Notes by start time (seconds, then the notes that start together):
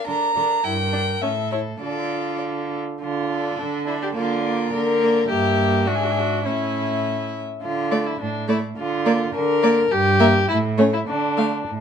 0.07 D3 D4 A#4 A#5
0.36 D3 D4 A#4
0.64 G2 E4 A#4 G5
0.93 D4
1.22 A2 C#4 A4 E5
1.52 E4 C#5
1.81 D3 F4 A4 D5
3.01 D3 F4
3.30 D4 A4
3.58 D3 D4
3.87 D4 E4 A4
4.02 G4
4.15 D3 A#3 F4 D5
4.44 A#3 D5
4.73 D3 A#4
5.00 A#3 D5
5.29 G2 A#3 G4 E5
5.86 G#2 D4 F#4 E5
5.95 G#4
6.03 F#4
6.11 G#4
6.19 F#4
6.45 A2 C#4 E4 E5
7.62 D3 F4
7.91 A3 D5
8.07 E4
8.20 A2 D4
8.48 A3 E4 D5
8.77 D3 F4
9.05 A#3 D5
9.34 D3 A#4
9.63 A#3 D5
9.91 G2 G4
10.19 A#3 E5
10.48 A2 E4
10.78 A3 C#4 C#5
10.93 E4
11.08 D3 D4
11.37 A3 F5
11.68 A2